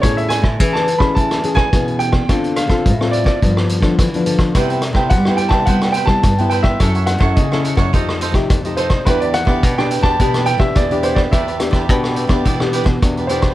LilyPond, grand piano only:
\new Staff \with { instrumentName = "Grand piano" } { \time 4/4 \key e \minor \tempo 4 = 106 cis''16 e''16 gis''8. a''8 b''16 a''8. gis''8. g''8~ | g''8 f''4 d''16 d''4.~ d''16 r8 | r4 fis''8 g''16 a''16 fis''8 g''16 a''8. g''16 e''16~ | e''8 fis''8 dis''4. r4 c''8 |
b'16 d''16 fis''8. g''8 a''8. g''16 e''16 d''8 c''16 d''16 | e''2.~ e''8 c''8 | }